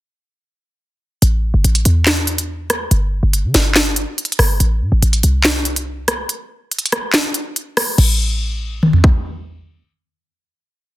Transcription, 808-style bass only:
1.22 A1
1.54 G1
1.64 A1
1.86 E2
2.91 G1
3.23 G1
3.44 D3
3.55 G1
4.39 G1
4.60 A1
4.81 A2
4.92 A1
5.02 A1
5.24 C2
7.98 A1

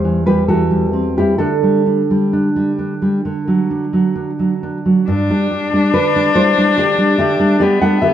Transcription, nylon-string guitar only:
Already playing: E2 G3 G4 C5
0.04 E3
0.26 G3 G4 B4
0.48 E3 F#4 A4
0.71 G3
0.93 C4
1.17 G3 E4 G4
1.38 D3 D4 A4
1.63 G3
1.86 D4
2.11 G3
2.33 D4
2.56 G3
2.79 D4
3.02 G3
3.25 D3
3.48 F#3
3.70 D4
3.93 F#3
4.15 D4
4.39 F#3
4.63 D4
4.86 F#3
5.08 G2
5.30 G3 D4
5.51 G3
5.73 G3 D4
5.94 D3 D4 B4
6.16 G3 D4
6.35 G3 E4 C5
6.57 G3 D4
6.78 D3 G4 D5
6.98 G3 D4
7.18 D3 G4 E5
7.39 G3 D4
7.60 G3 G4 D5
7.81 G3 D4 A4 F#5
8.02 D3 G4 E5

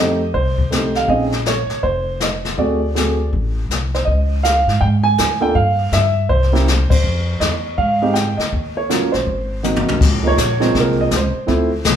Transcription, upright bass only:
Already playing: F2
0.34 C2
1.08 A#1
1.70 muted upright bass stroke
1.83 F1
2.58 D2
3.33 A1
3.69 C2
4.07 C#2
4.67 G#2
4.81 G#2
5.18 D2
5.55 G2
5.92 G2
6.29 C2
6.91 muted upright bass stroke
7.03 F2
7.40 E2
7.78 G#2
8.38 muted upright bass stroke
8.53 D#2
9.13 A#1
9.26 G#1
9.86 C2
10.00 C#2
10.38 A#1
10.74 C2
11.11 C#2
11.33 muted upright bass stroke
11.48 D2
11.86 C2

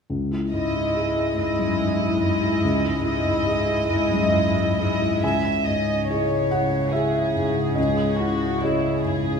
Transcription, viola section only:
0.53 G#3 E4
1.38 G#3 E4
2.22 G#3 E4
3.04 G#3 E4
3.88 G#3 E4
4.78 G#3 E4

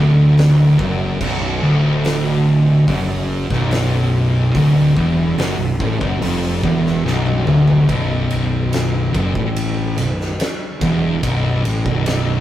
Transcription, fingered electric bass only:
Already playing: D1
0.79 F#1
1.21 B0
1.63 D1
2.88 F#1
3.50 B0
4.55 D1
4.97 E1
5.38 F#1
5.58 B0
5.80 A1
6.01 F#1
6.21 F1
6.64 E1
7.06 B0
7.47 D1
7.89 B0
9.14 F#1
9.35 A1
9.98 B0
10.81 E1
11.23 B0
11.65 A1
11.86 B0

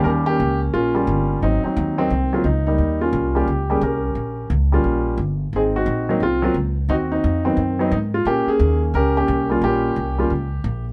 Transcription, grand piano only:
Already playing: D#2 G3 A#3
0.04 C#4 G4 A#4
0.26 A#3 C#4 G4
0.74 A#3 C#4 F4
0.95 G3 A#3 C#4 F4
1.43 F#3 C4 D#4
1.64 F#3 C4 D#4
1.98 D#3 F#3 A#3 C4 D#4
2.33 F#3 A#3 C4 F4
2.45 D#4
2.67 G3 A#3 D#4
3.01 A#3 C#4 F4
3.35 G3 A#3 C#4 F4 G4
3.70 G3 A#3 C#4 G4 G#4
3.83 C#4 G4 A#4
4.72 G3 A#3 C#4 F4
5.56 C4 D#4 G#4
5.76 C4 D#4 F#4
6.09 F#3 A#3 C4 D#4
6.23 C4 F4
6.42 F#3 A#3 C4 F4
6.90 C4 D#4 F#4
7.12 C4 D#4
7.45 D#3 F#3 B3 C4 D#4
7.79 F#3 B3 C4 D#4
7.92 D#4
8.14 F4
8.27 A#3 C#4 G4
8.48 C#4 G#4
8.95 C#4 G4 A#4
9.17 A#3 C#4 G4
9.50 G3 A#3 C#4 F4
9.64 A#3 C#4 G4
10.18 G3 A#3 C#4 F4

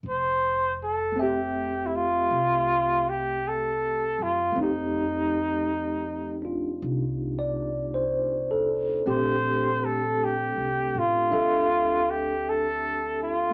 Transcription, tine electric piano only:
1.12 A3 C4
1.19 G4 E5
4.52 A3 C4
4.59 D#4 G4
6.42 D4 F4
7.39 D5
7.94 C5
8.51 A4
9.06 A3 C4 D4 G4
11.30 D4 A4 E5

